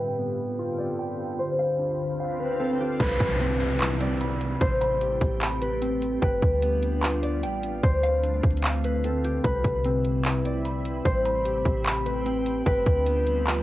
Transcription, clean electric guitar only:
0.00 0.98 G5 loud
0.18 0.78 B3 medium
0.59 1.39 F4 medium
0.79 1.39 B3 medium
0.99 1.39 G5 medium
1.59 2.19 F5 medium
1.79 3.00 D4 medium
2.20 2.99 F5 medium
2.60 3.00 C4 medium
3.00 4.20 B5 loud
3.41 3.99 C4 medium
3.81 4.61 E4 medium
4.01 4.61 C4 medium
4.21 4.61 B5 loud
4.81 5.40 B5 medium
5.01 6.22 G4 medium
5.41 6.21 B5 loud
5.82 6.22 C4 medium
6.22 7.42 G5 loud
6.62 7.22 B3 medium
7.03 7.83 F4 medium
7.23 7.83 B3 medium
7.43 7.83 G5 loud
8.03 8.63 F5 medium
8.23 9.44 D4 medium
8.64 9.44 F5 loud
9.04 9.44 C4 medium
9.44 10.64 B5 loud
9.86 10.44 C4 medium
10.25 11.05 E4 medium
10.45 11.05 C4 medium
10.65 11.05 B5 medium
11.26 11.84 B5 medium
11.45 12.66 G4 medium
11.85 12.66 B5 medium
12.26 12.66 C4 medium
12.66 13.63 G5 loud
13.07 13.63 B3 medium
13.48 13.63 F4 medium

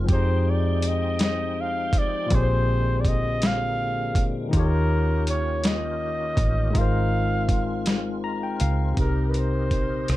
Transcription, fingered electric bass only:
0.10 1.93 F2 loud
1.93 2.27 B1 medium
2.31 4.16 A#1 loud
4.16 4.49 E2 medium
4.54 6.35 D#2 loud
6.38 6.71 A1 medium
6.76 8.57 G#1 medium
8.61 8.94 C#2 medium
8.97 9.71 C2 medium
9.71 10.05 A#1 medium
10.09 10.17 C2 medium

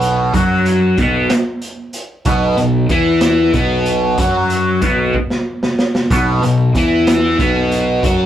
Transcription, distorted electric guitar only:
0.00 0.33 B2 medium
0.00 0.33 B3 loud
0.34 0.97 F#3 medium
0.34 0.97 F#4 medium
0.99 1.29 B2 medium
0.99 1.30 B3 medium
2.26 2.57 B2 medium
2.26 2.57 B3 loud
2.58 2.84 B2 medium
2.90 3.53 E3 medium
2.90 3.54 E4 loud
3.54 4.17 B2 medium
3.54 4.18 B3 loud
4.19 4.82 F#3 medium
4.19 4.82 F#4 medium
4.83 5.14 B2 medium
4.83 5.14 B3 medium
6.11 6.42 B2 medium
6.11 6.42 B3 medium
6.44 6.69 B2 medium
6.76 7.38 E3 medium
6.76 7.39 E4 loud
7.39 8.02 B2 medium
7.39 8.02 B3 loud
8.03 8.26 F#3 loud
8.03 8.26 F#4 medium

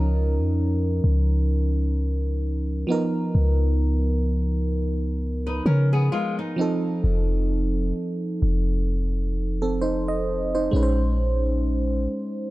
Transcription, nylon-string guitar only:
5.47 5.65 D#4 medium
5.47 5.65 B4 medium
5.66 5.92 C#4 medium
5.66 5.91 A#4 medium
5.93 6.11 B3 medium
5.93 6.11 G#4 medium
6.12 6.38 G#3 medium
6.12 6.37 F4 medium
6.39 6.83 D#4 medium

